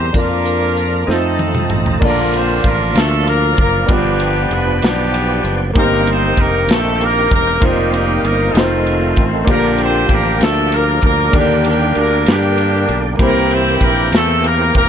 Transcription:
Already playing: E2 E3 A#3 C4 E4 G4 C5 E5 G5 A#5
0.13 F2 F3 A#3 D4 F4 A#4 D5 F5, kick, closed hi-hat
0.17 D4
0.45 closed hi-hat
0.77 closed hi-hat
1.07 F2 F3 A3 C4 D#4 F4 G#4 A4 C5 D#5 A5, snare
1.14 A4
1.39 high tom
1.55 mid tom
1.70 A1, mid tom
1.86 floor tom
2.00 A#1 D3 F3 A#3 C#4 D4 F4 A5, kick, crash
2.04 A#3 D4 F4 A#4 D5
2.09 D4
2.34 C4 C5, ride bell
2.64 A1 A#3 A#4, kick, ride bell
2.95 D2 A3 A4, snare, ride bell
3.27 A#3 A#4, ride bell
3.57 F#1 A#3 A#4, kick, ride bell
3.86 G1 G2 F3 B3 D4 F4 G4, kick, ride bell
3.90 G3 B3 D4 G4 D5
4.20 G3 G4, ride bell
4.51 F1 B3 B4, ride bell
4.82 B1 G3 B3 D4 G4, snare, ride bell
5.14 ride bell
5.44 F#1, ride bell
5.73 G1 G2 D#3 A#3 C4 D#4 F#4 A#4, kick, ride bell
5.78 G4 C5
6.07 C4 C5, ride bell
6.37 F1 A#3 A#4, kick, ride bell
6.68 A#1 A3 A4, snare, ride bell
7.01 A#3 A#4, ride bell
7.31 E1 A#3 A#4, kick, ride bell
7.60 F1 D#3 G3 A#3 C4 D#4 F4 G4 C5, kick, ride bell
7.93 G3 G4, ride bell
8.23 G1 A#3 A#4, ride bell
8.54 F1 D#3 F3 A3 C4 D#4 F4 C5, snare, ride bell
8.86 ride bell
9.16 A1, kick, ride bell
9.44 A#1 D3 F3 A#3 D4 F4 G4, kick, ride bell
9.48 A#3 D4 G4 A#4 D5
9.78 C4 C5, ride bell
10.09 A1 A#3 A#4, kick, ride bell
10.41 D2 A3 A4, snare, ride bell
10.72 A#3 A#4, ride bell
11.02 D2 A#3 A#4, kick, ride bell
11.30 D#2 D3 A#3 D4 G4, kick, ride bell
11.34 G3 A#3 D4 G4 D5
11.65 G3 G4, ride bell
11.95 D2 A#3 A#4, ride bell
12.26 G2 G3 A#3 D4 G4, snare, ride bell
12.58 ride bell
12.88 B1, ride bell
13.17 C2 C3 E3 A#3 C4 E4 G4, kick, ride bell
13.21 A#3 E4 G4 A#4 C5
13.51 C4 C5, ride bell
13.80 A#1 A#3 A#4, kick, ride bell
14.12 E2 A3 A4, snare, ride bell
14.44 A#3 A#4, ride bell
14.74 E1 A#3 A#4, kick, ride bell

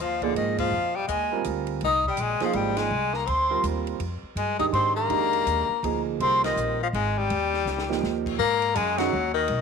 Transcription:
0.00 D#2 F3 F5
0.22 D3 F3 A#3 D#4 G#4 D5, kick, ride
0.35 G#2 D#3 D#5, ride
0.58 F3 F5, kick, ride
0.71 F2
0.95 G3 G5
1.08 D#2 G#3 G#5, hi-hat pedal, ride
1.32 G3 C4 F4 A#4
1.44 D2, hi-hat pedal, ride
1.67 ride
1.81 C2 D#4, ride
1.86 D#6
2.04 G3, kick
2.09 G5
2.17 A#1 G#3, hi-hat pedal, ride
2.23 G#5
2.40 F3 A#3 D#4 G#4, muted upright bass stroke, snare, ride
2.45 F5
2.53 G#1 G3 G5, ride
2.77 G#3 G#5, snare, ride
2.91 C2
3.13 A#3 A#5, snare
3.26 D2 C4 C6, ride
3.50 G3 C4 F4 A#4
3.63 D#2, hi-hat pedal, ride
3.87 ride
3.99 F2, ride
4.23 muted upright bass stroke
4.35 G2 G#3 G#5, hi-hat pedal, ride
4.59 D#3 G#3 D4 D#4 G4 D#6, kick, ride
4.72 G#2 C4 C6, ride
4.96 A#3 A#5
5.09 F2 D#3 G#3 D4 G4, ride
5.33 ride
5.46 D#2, hi-hat pedal, ride
5.69 muted upright bass stroke
5.83 D2 F3 A#3 D#4 G#4, ride
6.20 C2 G3 C4 F4 A#4 C6, ride
6.44 D#3 D#5, snare, ride
6.56 A#1, hi-hat pedal
6.83 F3 F5
6.93 G#1 G#3 G#5, ride
7.18 G3 G5
7.30 D#2, ride
7.54 snare
7.66 C#2, snare, hi-hat pedal
7.78 snare
7.89 F3 A#3 D#4 G4, snare
8.03 D#2, snare
8.26 kick, crash
8.39 G#2 A#3 A#5
8.62 ride
8.75 F#2 G#3 G#5, hi-hat pedal, ride
8.97 D#3 F#3 G#3 C#4 F#4 F#5, snare, ride
9.13 D#2
9.34 D#3 D#5
9.48 B1, ride

